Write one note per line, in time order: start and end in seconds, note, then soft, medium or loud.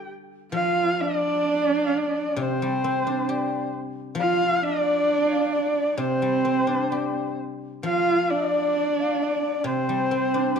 0.00 1.48 G3 medium
0.00 0.79 D4 soft
0.00 1.02 G4 soft
0.00 1.26 A4 soft
0.00 1.48 D5 soft
0.52 3.28 F3 medium
0.52 1.02 F4 medium
0.52 1.03 F5 loud
0.52 1.02 F5 loud
1.01 2.43 D4 loud
1.01 1.86 D5 loud
1.01 2.41 D5 medium
1.87 1.99 F5 medium
1.98 2.43 D5 medium
2.36 4.17 C3 medium
2.36 3.28 C5 medium
2.41 3.75 C4 medium
2.41 3.75 C5 medium
2.62 4.41 G3 soft
2.84 4.64 C4 medium
3.07 4.86 D4 soft
3.29 5.09 G4 soft
3.29 3.70 D5 medium
4.15 6.89 F3 medium
4.15 4.60 F4 loud
4.15 4.65 F5 loud
4.20 4.64 F5 loud
4.63 6.00 D4 loud
4.63 5.52 D5 loud
4.63 5.30 D5 medium
5.30 5.54 F5 medium
5.53 6.01 D5 medium
5.97 7.84 C3 medium
5.97 7.37 C4 medium
5.97 7.38 C5 medium
5.97 6.92 C5 medium
6.22 8.08 G3 soft
6.45 8.31 C4 soft
6.67 8.54 D4 soft
6.91 8.77 G4 soft
6.91 7.38 D5 medium
7.83 10.55 F3 medium
7.83 8.32 F4 medium
7.83 8.32 F5 loud
7.83 8.31 F5 loud
8.30 9.67 D4 medium
8.30 9.21 D5 loud
8.30 9.02 D5 medium
9.00 9.24 F5 medium
9.22 9.67 D5 medium
9.22 9.60 D5 medium
9.60 10.60 C3 medium
9.60 9.67 D5 soft
9.66 10.60 C4 medium
9.66 10.60 C5 medium
9.89 10.60 G3 soft
10.11 10.60 C4 soft
10.34 10.60 D4 soft
10.56 10.60 G4 soft